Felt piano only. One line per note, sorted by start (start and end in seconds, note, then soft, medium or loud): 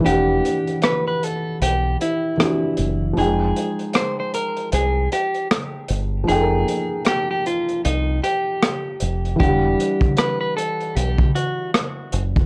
0.00 2.32 E3 medium
0.00 2.34 D4 medium
0.08 2.38 G4 medium
0.08 2.36 F#5 medium
2.37 3.16 E3 soft
2.37 3.17 D4 soft
2.37 3.18 F#4 soft
2.42 3.18 G4 soft
3.13 6.22 F3 medium
3.13 6.24 D#4 medium
3.20 6.28 G#3 medium
3.20 6.26 G5 medium
6.24 9.34 F3 medium
6.24 9.36 D#4 medium
6.31 6.39 A4 medium
6.31 9.37 G5 medium
6.41 9.42 A#4 medium
9.36 12.45 E3 medium
9.36 12.46 D4 medium
9.43 12.46 G3 medium
9.43 12.46 F#5 medium